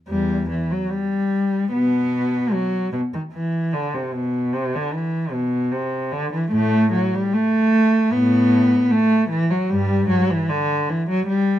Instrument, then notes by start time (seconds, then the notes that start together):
cello
0.09 E2 G3
0.50 E3
0.71 F#3
0.91 G3
1.72 B2 B3
2.52 F#3
2.93 B2
3.14 D#3
3.33 E3
3.73 D3
3.94 C3
4.13 B2
4.53 C3
4.76 D3
4.93 E3
5.32 B2
5.72 C3
6.12 D3
6.33 E3
6.52 A2 A3
6.93 F#3
7.15 G3
7.33 A3
8.12 A2 B3
8.91 A3
9.30 E3
9.50 F#3
9.70 G2 G3
10.09 F#3
10.30 E3
10.50 D3
10.89 E3
11.10 F#3
11.28 G3